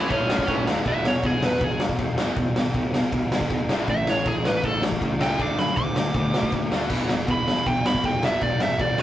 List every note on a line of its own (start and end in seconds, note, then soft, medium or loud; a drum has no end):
0.00 0.11 E4 medium
0.09 0.23 A1 medium
0.09 0.27 A2 loud
0.09 0.28 E3 loud
0.09 0.28 A3 loud
0.09 0.67 C#4 medium
0.09 0.64 C#5 medium
0.09 kick loud
0.09 ride medium
0.28 0.41 A1 medium
0.28 0.46 A2 medium
0.28 0.47 E3 medium
0.28 0.48 A3 loud
0.28 snare loud
0.39 kick loud
0.48 0.60 A1 loud
0.48 0.66 A2 loud
0.48 0.66 E3 loud
0.48 0.67 A3 loud
0.48 kick loud
0.48 ride medium
0.67 0.79 D#2 medium
0.67 0.85 A2 medium
0.67 0.85 E3 loud
0.67 0.85 A3 medium
0.67 snare loud
0.86 1.02 E1 medium
0.86 1.03 E2 medium
0.86 1.04 B2 medium
0.86 1.04 E3 loud
0.86 1.07 E5 medium
0.86 kick loud
0.86 ride medium
1.05 1.21 E1 loud
1.05 1.22 E2 medium
1.05 1.22 B2 medium
1.05 1.24 C#5 medium
1.05 snare loud
1.23 1.40 E1 medium
1.23 1.41 E2 medium
1.23 1.41 B2 medium
1.23 1.43 G#4 loud
1.23 kick loud
1.23 ride medium
1.42 1.59 E1 medium
1.42 1.59 E2 medium
1.42 1.60 B2 medium
1.42 1.64 B4 medium
1.42 snare loud
1.61 1.94 E1 medium
1.61 1.78 E2 medium
1.61 1.78 B2 medium
1.61 1.81 G#4 loud
1.61 kick loud
1.61 ride medium
1.80 1.97 E2 medium
1.80 1.97 B2 medium
1.80 snare loud
1.89 kick medium
1.98 2.31 E1 medium
1.98 2.16 E2 medium
1.98 2.16 B2 loud
1.98 kick loud
1.98 ride medium
2.18 2.35 E2 medium
2.18 2.36 B2 medium
2.18 2.36 E3 loud
2.18 snare loud
2.36 2.53 E1 loud
2.36 2.54 E2 medium
2.36 2.54 B2 medium
2.36 kick loud
2.36 ride medium
2.56 2.72 G#1 loud
2.56 2.73 E2 medium
2.56 2.73 B2 medium
2.56 snare loud
2.74 3.07 E1 medium
2.74 2.92 E2 medium
2.74 2.92 B2 medium
2.74 kick loud
2.74 ride medium
2.93 3.10 E2 medium
2.93 3.11 B2 medium
2.93 snare loud
3.12 3.29 E1 medium
3.12 3.29 E2 medium
3.12 3.29 B2 medium
3.12 kick loud
3.12 ride medium
3.31 3.48 D2 medium
3.31 3.48 E2 medium
3.31 3.49 B2 medium
3.31 snare loud
3.41 kick medium
3.50 3.67 E1 medium
3.50 3.67 E2 medium
3.50 3.67 B2 loud
3.50 kick loud
3.50 ride medium
3.69 3.85 A1 medium
3.69 3.87 A2 loud
3.69 3.87 E3 loud
3.69 3.88 A3 loud
3.69 snare loud
3.88 4.04 A1 loud
3.88 4.05 A2 medium
3.88 4.06 E3 medium
3.88 4.09 E5 medium
3.88 kick loud
3.88 ride medium
4.06 4.23 A1 loud
4.06 4.23 A2 medium
4.06 4.24 E3 medium
4.06 4.26 C#5 medium
4.06 snare loud
4.25 4.42 A1 medium
4.25 4.42 A2 medium
4.25 4.42 E3 medium
4.25 4.47 G#4 loud
4.25 kick loud
4.25 ride medium
4.44 4.61 A1 medium
4.44 4.62 A2 medium
4.44 4.62 E3 medium
4.44 4.65 B4 medium
4.44 snare loud
4.63 4.96 A1 medium
4.63 4.80 A2 medium
4.63 4.81 E3 medium
4.63 4.83 A4 loud
4.63 kick loud
4.63 ride medium
4.81 4.99 A2 medium
4.81 4.99 E3 medium
4.81 snare loud
4.92 kick medium
5.01 5.34 C#2 medium
5.01 5.18 A2 medium
5.01 5.18 E3 medium
5.01 kick loud
5.01 ride medium
5.19 5.38 A2 medium
5.19 5.38 E3 loud
5.19 5.38 A3 loud
5.19 5.40 G5 loud
5.19 snare loud
5.38 5.56 D2 medium
5.38 5.57 D3 medium
5.38 5.56 A3 medium
5.38 5.57 D4 loud
5.38 5.59 D6 loud
5.38 kick loud
5.38 ride medium
5.58 5.74 F#2 loud
5.58 5.75 D3 medium
5.58 5.75 A3 medium
5.58 5.77 B5 medium
5.58 snare medium
5.76 6.10 D2 medium
5.76 5.93 D3 medium
5.76 5.94 A3 medium
5.76 5.95 D6 medium
5.76 kick loud
5.76 ride medium
5.95 6.12 D3 medium
5.95 6.12 A3 medium
5.95 7.07 D6 loud
5.95 snare loud
6.14 6.31 D2 medium
6.14 6.31 D3 medium
6.14 6.31 A3 medium
6.14 kick loud
6.14 ride medium
6.33 6.50 B2 medium
6.33 6.51 D3 medium
6.33 6.51 A3 medium
6.33 snare loud
6.43 kick medium
6.52 6.69 D2 medium
6.52 6.70 D3 medium
6.52 6.70 A3 medium
6.52 kick loud
6.52 ride medium
6.71 6.88 D2 medium
6.71 6.89 D3 loud
6.71 6.89 A3 loud
6.71 6.90 D4 loud
6.71 snare loud
6.90 7.07 E1 medium
6.90 7.08 E2 medium
6.90 7.08 B2 medium
6.90 7.09 E3 loud
6.90 kick loud
6.90 crash medium
7.09 7.26 E1 medium
7.09 7.26 E2 medium
7.09 7.26 B2 medium
7.09 snare loud
7.27 7.45 E1 medium
7.27 7.45 E2 medium
7.27 7.45 B2 medium
7.27 7.66 B5 loud
7.27 kick loud
7.27 ride medium
7.46 7.64 E1 medium
7.46 7.64 E2 medium
7.46 7.64 B2 medium
7.46 snare loud
7.66 7.99 E1 loud
7.66 7.83 E2 medium
7.66 7.83 B2 loud
7.66 7.85 G5 medium
7.66 kick loud
7.66 ride medium
7.85 8.02 E2 medium
7.85 8.02 B2 medium
7.85 8.04 B5 medium
7.85 snare loud
7.95 kick medium
8.03 8.37 E1 medium
8.03 8.21 E2 medium
8.03 8.21 B2 medium
8.03 8.23 G5 medium
8.03 kick loud
8.03 ride medium
8.22 8.39 E2 medium
8.22 8.40 B2 loud
8.22 8.41 E3 medium
8.22 8.42 E5 medium
8.22 snare loud
8.41 8.58 E1 loud
8.41 8.58 E2 medium
8.41 8.59 B2 medium
8.41 8.61 D5 medium
8.41 kick loud
8.41 ride medium
8.60 8.77 G#1 medium
8.60 8.77 E2 medium
8.60 8.78 B2 medium
8.60 8.81 E5 medium
8.60 snare loud
8.79 9.03 E1 medium
8.79 8.96 E2 medium
8.79 8.96 B2 medium
8.79 8.99 D5 medium
8.79 kick loud
8.79 ride medium
8.97 9.03 E2 medium
8.97 9.03 B2 medium
8.97 snare loud